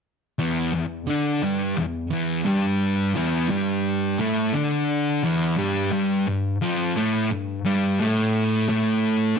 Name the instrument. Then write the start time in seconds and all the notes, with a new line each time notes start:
distorted electric guitar
0.39 E2 E3
0.75 E2
1.09 D3 D4
1.43 G2 G3
1.78 E2
2.13 E2 E3
2.47 G2 G3
3.17 E2 E3
3.50 G2 G3
4.20 A2 A3
4.55 D3 D4
5.23 E2 E3
5.58 G2 G3
5.92 G2 G3
6.27 G2
6.62 F2 F3
6.96 A2 A3
7.31 G2
7.65 G2 G3
7.99 A2 A3
8.69 A2 A3